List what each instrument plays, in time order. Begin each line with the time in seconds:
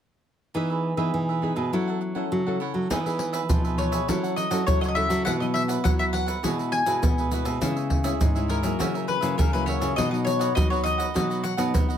0.54 nylon-string guitar E3 B3 D#4 G#4, cavaquinho D#4 G#4 B4 E5
0.70 cavaquinho G#4 B4 E5
0.97 nylon-string guitar E3 B3 D#4 G#4, cavaquinho G#4 B4 E5
1.14 nylon-string guitar B2 E3
1.29 cavaquinho G#4 B4 E5
1.42 nylon-string guitar B3 D#4 G#4, cavaquinho D#4 G#4 B4 E5
1.56 nylon-string guitar B2, cavaquinho G#4 B4 E5
1.72 nylon-string guitar F#3 C#4 E4 A4, cavaquinho E4 A4 C#5 F#5
1.88 cavaquinho A4 C#5 F#5
2.01 muted cavaquinho stroke
2.15 nylon-string guitar C#4 E4 A4, cavaquinho A4 C#5 F#5
2.32 nylon-string guitar C#3 F#3
2.47 nylon-string guitar C#4 E4 A4, cavaquinho A4 C#5 F#5
2.60 cavaquinho E4 A4 C#5 F#5
2.74 nylon-string guitar F#3, cavaquinho A4 C#5 F#5
2.90 nylon-string guitar E3 B3 D#4 G#4, cavaquinho D#4 G#4 B4 E5, pandeiro, shaker, surdo
3.06 nylon-string guitar B3 D#4 G#4, cavaquinho G#4 B4 E5, pandeiro, shaker
3.19 pandeiro
3.33 cavaquinho G#4 B4 E5, pandeiro, shaker
3.49 nylon-string guitar B2 F3 B3 D#4 G#4, pandeiro, shaker, surdo
3.64 cavaquinho G#4 B4 E5, pandeiro, shaker
3.77 cavaquinho D#4 G#4 B4 E5, mandolin C#5, pandeiro
3.92 cavaquinho G#4 B4 E5, pandeiro, shaker
4.08 nylon-string guitar F#3 C#4 E4 A4, cavaquinho E4 A4 C#5 F#5, pandeiro, shaker, surdo
4.23 cavaquinho A4 C#5 F#5, pandeiro, shaker
4.36 mandolin D#5, muted cavaquinho stroke, pandeiro, shaker
4.51 nylon-string guitar F#3 C#4 E4 A4, cavaquinho A4 C#5 F#5, pandeiro, shaker
4.67 nylon-string guitar C#3 F#3 C#4 E4 A4, mandolin C#5, pandeiro, shaker, surdo
4.81 cavaquinho A4 C#5 F#5, mandolin D#5, pandeiro, shaker
4.85 mandolin C#5 D#5
4.95 nylon-string guitar C#4 E4 A4, cavaquinho E4 A4 C#5 F#5, mandolin E5, pandeiro
5.09 nylon-string guitar F#3, cavaquinho A4 C#5 F#5, pandeiro, shaker
5.25 nylon-string guitar B2 F#3 B3 E4, cavaquinho F#4 B4 E5 F#5, mandolin F#5, pandeiro, shaker, surdo
5.40 nylon-string guitar F#3 B3 E4, cavaquinho B4 E5 F#5, mandolin D#5, pandeiro, shaker
5.54 mandolin E5, pandeiro
5.68 cavaquinho B4 E5 F#5, pandeiro, shaker
5.84 nylon-string guitar F#3 B3 E4, mandolin F#5, pandeiro, shaker, surdo
5.99 cavaquinho B4 E5 F#5, mandolin E5, pandeiro, shaker
6.13 cavaquinho F#4 B4 E5 F#5, mandolin F#5, pandeiro
6.26 cavaquinho B4 E5 F#5, pandeiro, shaker
6.43 nylon-string guitar B2 G#3 E4 F#4, cavaquinho F#4 G#4 B4 E5, pandeiro, shaker, surdo
6.58 cavaquinho G#4 B4 E5, pandeiro, shaker
6.72 mandolin G#5, muted cavaquinho stroke, pandeiro
6.86 nylon-string guitar B2 G#3 E4 F#4, cavaquinho G#4 B4 E5, pandeiro, shaker
7.02 nylon-string guitar B2 B3, pandeiro, shaker, surdo
7.18 cavaquinho G#4 B4 E5, pandeiro, shaker
7.31 nylon-string guitar G#3 E4 F#4, cavaquinho F#4 G#4 B4 E5, pandeiro, shaker
7.45 nylon-string guitar B2, cavaquinho G#4 B4 E5, pandeiro, shaker
7.61 nylon-string guitar C#3 G#3 C#4 E4, cavaquinho E4 G#4 C#5 E5, pandeiro, shaker, surdo
7.76 cavaquinho G#4 C#5 E5, pandeiro, shaker
7.90 pandeiro, surdo
8.04 nylon-string guitar G#3 C#4 E4, cavaquinho G#4 C#5 E5, pandeiro, shaker
8.21 nylon-string guitar G#2, pandeiro, shaker, surdo
8.35 nylon-string guitar G#3 C#4 E4, cavaquinho G#4 C#5 E5, pandeiro, shaker
8.48 cavaquinho E4 G#4 C#5 E5, mandolin A#4, pandeiro
8.63 nylon-string guitar F#3 A#3 E4, cavaquinho G#4 C#5 E5, pandeiro, shaker
8.79 nylon-string guitar C#3, cavaquinho F#4 A#4 C#5 E5, pandeiro, shaker, surdo
8.94 cavaquinho A#4 C#5 E5, pandeiro, shaker
9.07 mandolin B4, muted cavaquinho stroke, pandeiro
9.21 nylon-string guitar C#3 F#3 A#3 E4, cavaquinho A#4 C#5 E5, pandeiro, shaker
9.38 nylon-string guitar C#3, mandolin A#4, pandeiro, shaker, surdo
9.53 nylon-string guitar F#3 A#3 E4, cavaquinho A#4 C#5 E5, mandolin B4, pandeiro, shaker
9.66 cavaquinho F#4 A#4 C#5 E5, mandolin C#5, pandeiro
9.80 nylon-string guitar C#3, cavaquinho A#4 C#5 E5, pandeiro, shaker
9.96 nylon-string guitar B2 F#3 B3 D#4, cavaquinho F#4 B4 D#5 F#5, mandolin D#5, pandeiro, shaker, surdo
10.11 nylon-string guitar F#3 B3 D#4, mandolin B4, cavaquinho B4 D#5 F#5, pandeiro, shaker
10.25 mandolin C#5, pandeiro, shaker
10.39 cavaquinho B4 D#5 F#5, pandeiro, shaker
10.55 nylon-string guitar F#3 B3 D#4, mandolin D#5, pandeiro, shaker, surdo
10.70 cavaquinho B4 D#5 F#5, mandolin C#5, pandeiro, shaker
10.84 cavaquinho F#4 B4 D#5 F#5, mandolin D#5, pandeiro, shaker
10.98 cavaquinho B4 D#5 F#5, pandeiro, shaker
11.14 nylon-string guitar B2 F#3 B3 D#4, cavaquinho F#4 B4 D#5 F#5, pandeiro, shaker, surdo
11.30 cavaquinho B4 D#5 F#5, pandeiro, shaker
11.43 mandolin F#5, muted cavaquinho stroke, pandeiro, shaker
11.57 nylon-string guitar B2 F#3 B3 D#4, cavaquinho B4 D#5 F#5, pandeiro, shaker
11.74 nylon-string guitar F#3 B3, pandeiro, shaker, surdo
11.89 cavaquinho B4 D#5 F#5, pandeiro, shaker